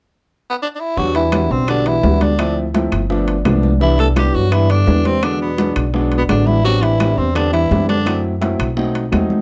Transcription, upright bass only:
0, 0, Header, 1, 2, 480
1, 0, Start_track
1, 0, Key_signature, 1, "minor"
1, 0, Tempo, 354400
1, 1319, Time_signature, 4, 2, 24, 8
1, 12753, End_track
2, 0, Start_track
2, 0, Title_t, "Upright bass"
2, 0, Program_c, 0, 32
2, 1316, Note_on_c, 0, 40, 78
2, 1988, Note_off_c, 0, 40, 0
2, 2035, Note_on_c, 0, 35, 78
2, 2708, Note_off_c, 0, 35, 0
2, 2754, Note_on_c, 0, 38, 74
2, 3881, Note_off_c, 0, 38, 0
2, 3958, Note_on_c, 0, 31, 78
2, 4631, Note_off_c, 0, 31, 0
2, 4674, Note_on_c, 0, 36, 83
2, 5802, Note_off_c, 0, 36, 0
2, 5882, Note_on_c, 0, 43, 83
2, 6553, Note_off_c, 0, 43, 0
2, 6601, Note_on_c, 0, 40, 82
2, 7725, Note_off_c, 0, 40, 0
2, 7801, Note_on_c, 0, 35, 78
2, 8472, Note_off_c, 0, 35, 0
2, 8522, Note_on_c, 0, 33, 77
2, 9644, Note_off_c, 0, 33, 0
2, 9720, Note_on_c, 0, 40, 78
2, 10390, Note_off_c, 0, 40, 0
2, 10442, Note_on_c, 0, 42, 75
2, 11562, Note_off_c, 0, 42, 0
2, 11638, Note_on_c, 0, 35, 79
2, 12307, Note_off_c, 0, 35, 0
2, 12360, Note_on_c, 0, 40, 78
2, 12753, Note_off_c, 0, 40, 0
2, 12753, End_track
0, 0, End_of_file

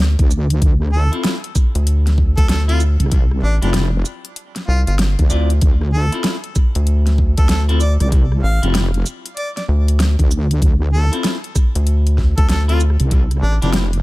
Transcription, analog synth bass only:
0, 0, Header, 1, 2, 480
1, 0, Start_track
1, 0, Key_signature, -1, "minor"
1, 0, Tempo, 625000
1, 475, Time_signature, 4, 2, 24, 8
1, 10772, End_track
2, 0, Start_track
2, 0, Title_t, "Analog synth bass"
2, 0, Program_c, 0, 38
2, 0, Note_on_c, 0, 38, 104
2, 122, Note_off_c, 0, 38, 0
2, 1344, Note_on_c, 0, 38, 99
2, 1801, Note_off_c, 0, 38, 0
2, 1823, Note_on_c, 0, 38, 99
2, 2281, Note_off_c, 0, 38, 0
2, 2633, Note_on_c, 0, 33, 104
2, 2761, Note_off_c, 0, 33, 0
2, 3595, Note_on_c, 0, 36, 102
2, 3722, Note_off_c, 0, 36, 0
2, 3743, Note_on_c, 0, 31, 100
2, 3961, Note_off_c, 0, 31, 0
2, 4076, Note_on_c, 0, 38, 98
2, 4301, Note_off_c, 0, 38, 0
2, 5187, Note_on_c, 0, 38, 94
2, 5643, Note_off_c, 0, 38, 0
2, 5668, Note_on_c, 0, 38, 93
2, 6123, Note_off_c, 0, 38, 0
2, 6477, Note_on_c, 0, 33, 100
2, 6603, Note_off_c, 0, 33, 0
2, 7438, Note_on_c, 0, 38, 103
2, 7803, Note_off_c, 0, 38, 0
2, 9027, Note_on_c, 0, 38, 98
2, 9482, Note_off_c, 0, 38, 0
2, 9504, Note_on_c, 0, 38, 99
2, 9961, Note_off_c, 0, 38, 0
2, 10310, Note_on_c, 0, 33, 98
2, 10440, Note_off_c, 0, 33, 0
2, 10772, End_track
0, 0, End_of_file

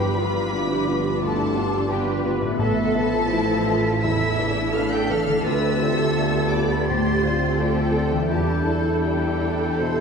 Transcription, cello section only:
0, 0, Header, 1, 2, 480
1, 0, Start_track
1, 0, Key_signature, 0, "minor"
1, 0, Tempo, 688863
1, 1807, Time_signature, 4, 2, 24, 8
1, 2291, Tempo, 715137
1, 6131, Tempo, 765306
1, 6755, End_track
2, 0, Start_track
2, 0, Title_t, "Cello section"
2, 0, Program_c, 0, 48
2, 0, Note_on_c, 0, 67, 74
2, 125, Note_on_c, 0, 65, 70
2, 127, Note_off_c, 0, 67, 0
2, 368, Note_off_c, 0, 65, 0
2, 370, Note_on_c, 0, 64, 69
2, 609, Note_on_c, 0, 62, 62
2, 610, Note_off_c, 0, 64, 0
2, 847, Note_on_c, 0, 64, 69
2, 850, Note_off_c, 0, 62, 0
2, 1088, Note_on_c, 0, 62, 70
2, 1090, Note_off_c, 0, 64, 0
2, 1323, Note_on_c, 0, 71, 78
2, 1328, Note_off_c, 0, 62, 0
2, 1794, Note_off_c, 0, 71, 0
2, 1803, Note_on_c, 0, 69, 86
2, 2279, Note_off_c, 0, 69, 0
2, 2290, Note_on_c, 0, 64, 75
2, 2535, Note_on_c, 0, 65, 71
2, 2536, Note_off_c, 0, 64, 0
2, 2785, Note_off_c, 0, 65, 0
2, 2787, Note_on_c, 0, 64, 75
2, 3259, Note_on_c, 0, 69, 78
2, 3261, Note_off_c, 0, 64, 0
2, 3736, Note_on_c, 0, 71, 82
2, 3738, Note_off_c, 0, 69, 0
2, 3975, Note_on_c, 0, 69, 83
2, 3979, Note_off_c, 0, 71, 0
2, 4688, Note_on_c, 0, 67, 75
2, 4696, Note_off_c, 0, 69, 0
2, 4925, Note_off_c, 0, 67, 0
2, 4930, Note_on_c, 0, 65, 68
2, 5169, Note_on_c, 0, 69, 74
2, 5171, Note_off_c, 0, 65, 0
2, 5650, Note_off_c, 0, 69, 0
2, 5651, Note_on_c, 0, 67, 69
2, 5885, Note_off_c, 0, 67, 0
2, 5888, Note_on_c, 0, 69, 76
2, 6755, Note_off_c, 0, 69, 0
2, 6755, End_track
0, 0, End_of_file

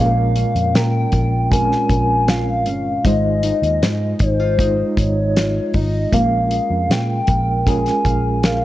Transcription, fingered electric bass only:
0, 0, Header, 1, 2, 480
1, 0, Start_track
1, 0, Tempo, 769231
1, 1904, Time_signature, 4, 2, 24, 8
1, 5396, End_track
2, 0, Start_track
2, 0, Title_t, "Fingered electric bass"
2, 0, Program_c, 0, 33
2, 0, Note_on_c, 0, 34, 96
2, 271, Note_off_c, 0, 34, 0
2, 343, Note_on_c, 0, 41, 91
2, 439, Note_off_c, 0, 41, 0
2, 458, Note_on_c, 0, 46, 91
2, 653, Note_off_c, 0, 46, 0
2, 699, Note_on_c, 0, 34, 89
2, 1085, Note_off_c, 0, 34, 0
2, 1179, Note_on_c, 0, 34, 88
2, 1662, Note_off_c, 0, 34, 0
2, 1662, Note_on_c, 0, 31, 94
2, 1854, Note_off_c, 0, 31, 0
2, 1899, Note_on_c, 0, 32, 87
2, 2189, Note_off_c, 0, 32, 0
2, 2260, Note_on_c, 0, 39, 94
2, 2357, Note_off_c, 0, 39, 0
2, 2381, Note_on_c, 0, 44, 94
2, 2574, Note_off_c, 0, 44, 0
2, 2621, Note_on_c, 0, 32, 87
2, 3006, Note_off_c, 0, 32, 0
2, 3100, Note_on_c, 0, 32, 96
2, 3485, Note_off_c, 0, 32, 0
2, 3582, Note_on_c, 0, 32, 93
2, 3774, Note_off_c, 0, 32, 0
2, 3821, Note_on_c, 0, 34, 102
2, 4110, Note_off_c, 0, 34, 0
2, 4181, Note_on_c, 0, 41, 92
2, 4278, Note_off_c, 0, 41, 0
2, 4298, Note_on_c, 0, 46, 94
2, 4492, Note_off_c, 0, 46, 0
2, 4540, Note_on_c, 0, 34, 94
2, 4925, Note_off_c, 0, 34, 0
2, 5021, Note_on_c, 0, 34, 92
2, 5396, Note_off_c, 0, 34, 0
2, 5396, End_track
0, 0, End_of_file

